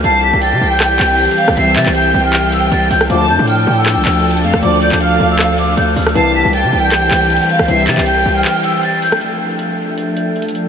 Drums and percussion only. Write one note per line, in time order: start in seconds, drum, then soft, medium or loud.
0.04 closed hi-hat medium
0.42 closed hi-hat medium
0.80 cross-stick medium
0.80 clap loud
0.80 closed hi-hat medium
0.99 clap loud
0.99 closed hi-hat medium
1.19 closed hi-hat soft
1.25 closed hi-hat medium
1.31 closed hi-hat medium
1.38 closed hi-hat medium
1.48 cross-stick loud
1.57 closed hi-hat medium
1.76 clap loud
1.76 closed hi-hat medium
1.82 clap medium
1.82 closed hi-hat medium
1.89 closed hi-hat soft
1.95 closed hi-hat medium
2.33 clap loud
2.33 closed hi-hat medium
2.52 closed hi-hat medium
2.72 closed hi-hat medium
2.91 closed hi-hat medium
2.91 open hi-hat medium
2.96 closed hi-hat medium
3.01 cross-stick loud
3.01 closed hi-hat medium
3.05 closed hi-hat medium
3.10 closed hi-hat medium
3.47 closed hi-hat medium
3.86 cross-stick medium
3.86 clap loud
3.86 closed hi-hat medium
4.05 clap loud
4.05 closed hi-hat medium
4.24 closed hi-hat soft
4.31 closed hi-hat medium
4.37 closed hi-hat medium
4.44 closed hi-hat medium
4.54 cross-stick loud
4.63 closed hi-hat medium
4.82 closed hi-hat medium
4.92 clap medium
4.92 closed hi-hat soft
5.00 closed hi-hat medium
5.39 cross-stick medium
5.39 clap loud
5.39 closed hi-hat medium
5.58 closed hi-hat medium
5.77 closed hi-hat medium
5.96 closed hi-hat soft
5.96 open hi-hat medium
6.03 cross-stick loud
6.03 closed hi-hat medium
6.09 closed hi-hat medium
6.16 closed hi-hat medium
6.53 closed hi-hat medium
6.92 cross-stick medium
6.92 clap loud
6.92 closed hi-hat medium
7.11 clap loud
7.11 closed hi-hat medium
7.30 closed hi-hat soft
7.37 closed hi-hat medium
7.43 closed hi-hat medium
7.49 closed hi-hat medium
7.59 cross-stick loud
7.68 closed hi-hat medium
7.87 clap loud
7.87 closed hi-hat medium
7.94 clap medium
7.94 closed hi-hat medium
8.00 closed hi-hat soft
8.06 closed hi-hat medium
8.45 clap loud
8.45 closed hi-hat medium
8.64 closed hi-hat medium
8.83 closed hi-hat medium
9.02 closed hi-hat medium
9.02 open hi-hat medium
9.07 closed hi-hat medium
9.12 cross-stick loud
9.12 closed hi-hat medium
9.17 closed hi-hat medium
9.21 closed hi-hat medium
9.59 closed hi-hat medium
9.98 closed hi-hat medium
10.17 closed hi-hat medium
10.36 closed hi-hat soft
10.42 closed hi-hat medium
10.49 closed hi-hat medium
10.55 closed hi-hat medium